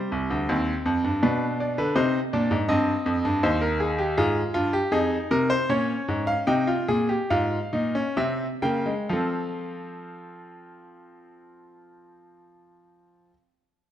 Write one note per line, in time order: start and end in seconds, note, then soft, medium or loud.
0.00 0.46 G3 medium
0.00 1.18 C5 medium
0.12 0.29 C2 medium
0.30 0.48 D2 medium
0.49 0.72 D#2 medium
0.49 1.20 C4 medium
0.86 1.03 F2 medium
1.04 1.22 G2 medium
1.22 1.76 B2 medium
1.22 1.94 D4 medium
1.22 1.45 B4 medium
1.60 1.77 D5 medium
1.78 1.95 D3 medium
1.78 1.95 B4 medium
1.96 2.18 C3 medium
1.96 2.18 D#4 medium
1.96 2.18 C5 medium
2.33 2.51 A#2 loud
2.33 2.56 D4 medium
2.33 2.56 D5 medium
2.51 2.68 G#2 medium
2.68 2.91 G2 loud
2.68 3.40 C4 medium
2.68 3.40 D#5 medium
3.06 3.23 F2 medium
3.25 3.42 G2 loud
3.43 4.14 D#2 loud
3.43 4.14 D#4 medium
3.43 3.61 C5 medium
3.61 3.79 A#4 medium
3.80 3.97 G#4 medium
3.99 4.16 G4 medium
4.18 4.40 G#2 medium
4.18 4.53 F4 medium
4.18 4.40 G#4 medium
4.54 4.77 G2 medium
4.54 4.72 F4 loud
4.73 4.91 G4 medium
4.92 5.15 F2 medium
4.92 5.66 D#4 medium
4.92 5.15 G#4 medium
5.31 5.54 C3 medium
5.31 5.49 A#4 loud
5.50 5.68 C5 loud
5.69 5.93 A#2 medium
5.69 6.46 C#4 medium
5.69 6.26 C#5 medium
6.08 6.33 G#2 medium
6.27 6.47 F5 loud
6.47 6.73 C3 medium
6.47 6.67 D#4 medium
6.47 7.28 G5 medium
6.67 6.87 F4 medium
6.88 7.14 A#2 medium
6.88 7.09 G#4 medium
7.09 7.29 G4 medium
7.30 7.57 G#2 medium
7.30 7.57 F4 medium
7.30 8.14 F5 medium
7.73 8.00 A#2 medium
7.73 7.94 D#4 medium
7.95 8.16 C#4 medium
8.17 8.45 C3 medium
8.17 8.45 C4 medium
8.17 8.45 E5 medium
8.62 8.91 C#3 medium
8.62 8.85 A#3 medium
8.62 8.91 G5 medium
8.86 9.08 G#3 medium
9.09 13.30 F3 medium
9.09 13.33 C4 medium
9.09 13.30 F4 medium
9.09 13.33 A4 medium
9.09 13.30 F5 medium